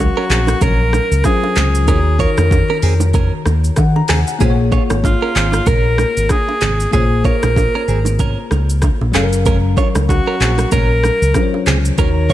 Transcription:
Already playing: F#3 C#4 A#4 F5
0.00 F#4, high bongo, shaker
0.17 C#4 A#4
0.30 A#1 C4 G#4, clap, shaker
0.47 cross-stick, low bongo, shaker
0.61 A#1 C#4 A#4, kick, low conga, shaker
0.93 cross-stick, low bongo, shaker
1.12 C#2, shaker
1.24 F#3 C#4 F4 G#4 C5, kick, cross-stick, high bongo, shaker
1.44 high bongo
1.56 C#2 C4 G#4, clap, low conga, shaker
1.75 shaker
1.86 D#2 D#3 C#4 D#4 F4 G#4 A#4, kick, low conga, shaker
1.91 C#5
1.96 F#4
2.19 F4 A#4 C#5, kick, shaker
2.38 F2, cross-stick, low bongo, shaker
2.51 kick, high bongo, shaker
2.70 C#4 A#4
2.82 F2 C4 G#4, open hi-hat, shaker
3.00 low bongo, shaker
3.14 C#4 A#4, kick, low conga, shaker
3.46 D#2, cross-stick, low bongo, shaker
3.64 shaker
3.76 D#3 F#5, kick, cross-stick, high bongo, shaker
3.96 A#5, high bongo
4.08 D#2 C4 G#4 G#5, cross-stick, clap, open hi-hat, low conga, shaker
4.27 F#5, shaker
4.39 A#1 A#3 C#4 F4 G#4, kick, low conga, shaker
4.44 C5
4.50 C#5
4.72 F4 C#5, kick, high bongo, shaker
4.90 G#1, cross-stick, low bongo, shaker
5.04 F4, kick, high bongo, shaker
5.22 C#4 A#4
5.35 G#1 C4 G#4, clap, shaker
5.52 cross-stick, low bongo, shaker
5.66 A#1 C#4 A#4, kick, low conga, shaker
5.98 cross-stick, low bongo, shaker
6.17 G#1, shaker
6.29 G#4, kick, cross-stick, high bongo, shaker
6.49 high bongo
6.61 G#1 C4 G#4, clap, low conga, shaker
6.80 shaker
6.91 A#1 A#3 C#4 F4 G#4, kick, low conga, shaker
6.96 C5
7.25 F4 A#4 C#5, kick, high bongo, shaker
7.43 A#1, cross-stick, low bongo, shaker
7.56 kick, high bongo, shaker
7.75 C#4 A#4
7.88 G#1 C4 G#4, shaker
8.05 low bongo, shaker
8.19 C#4 A#4, kick, low conga, shaker
8.51 C#2, cross-stick, low bongo, shaker
8.70 shaker
8.82 kick, cross-stick, high bongo, shaker
9.01 A#1, high bongo
9.12 F#1 F#3 C#4 G#4 F5, cross-stick, clap, shaker
9.16 A4, low conga
9.23 A#4
9.33 shaker
9.46 C#4 A#4, kick, low conga, shaker
9.77 F4 C#5, kick, high bongo, shaker
9.95 C#2, cross-stick, low bongo, shaker
10.09 F#4, kick, high bongo, shaker
10.27 C#4 A#4
10.41 A#1 C4 G#4, clap, shaker
10.58 cross-stick, low bongo, shaker
10.72 A#1 C#4 A#4, kick, low conga, shaker
11.04 cross-stick, low bongo, shaker
11.22 C#2, shaker
11.34 F#3 C#4 F4 C5, kick, cross-stick, high bongo, shaker
11.43 C#5
11.54 high bongo
11.66 C#2 C4 G#4, clap, low conga, shaker
11.85 shaker
11.96 D#2 D#3 C#4 D#4 F#4 A#4, kick, low conga, shaker
12.01 C#5
12.30 C#5, kick, shaker

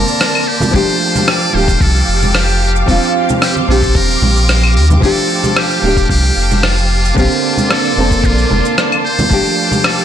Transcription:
Already playing: D3 A#3 C4 A#4 D5 A5 C6
0.08 shaker
0.21 cross-stick, shaker
0.35 claves, shaker
0.47 G4 F5 D6
0.60 high conga, low conga, shaker
0.71 F1 F3 A3 D4 C5, kick, shaker
0.76 G4
0.89 shaker
1.16 low conga, shaker
1.28 D5, cross-stick, claves, shaker
1.42 shaker
1.52 D1 F3 A3 D4 C5
1.57 G4
1.68 kick, shaker
1.81 C2 A4, kick, shaker
1.96 shaker
2.08 F1
2.22 low conga, shaker
2.35 G4, cross-stick, shaker
2.49 shaker
2.76 shaker
2.86 D#1 F3 C4 D4 A4 C6, kick, shaker
2.91 F4
3.03 shaker
3.29 low conga, shaker
3.42 G4, cross-stick, shaker
3.56 high conga, shaker
3.67 A#1 F3 C4 D4 A4
3.72 G4
3.83 kick, shaker
3.95 D#1 A#4, kick, shaker
4.10 shaker
4.22 A#1, low conga
4.37 shaker
4.49 cross-stick, shaker
4.63 claves, shaker
4.76 D#2 A#4
4.90 high conga, low conga, shaker
5.00 F1 F3 A3 D4 A4 F5 A5, kick, shaker
5.05 G4
5.17 shaker
5.44 low conga, shaker
5.57 G4, cross-stick, claves, shaker
5.71 shaker
5.82 D1 F3 A3 D4
5.86 G4
5.97 kick, shaker
6.09 C2 G4, kick, shaker
6.24 shaker
6.37 F1
6.51 low conga, shaker
6.63 F4, cross-stick, shaker
6.78 shaker
7.05 shaker
7.14 A#1 D3 A#3 C4 F4 D5 C6, kick, shaker
7.19 G4
7.31 shaker
7.58 low conga, shaker
7.71 A4, cross-stick, shaker
7.85 shaker
7.96 F1 D3 A#3 C4
8.00 A4
8.11 kick, shaker
8.24 A#1 F4, kick, shaker
8.38 shaker
8.51 F1, low conga
8.65 shaker
8.78 cross-stick, shaker
8.92 claves, shaker
9.04 G4 C5 F5 D6
9.19 high conga, low conga, shaker
9.29 F1 F3 A3 D4, kick, shaker
9.33 G4
9.46 shaker
9.72 low conga, shaker
9.84 A4, cross-stick, claves, shaker
9.99 shaker

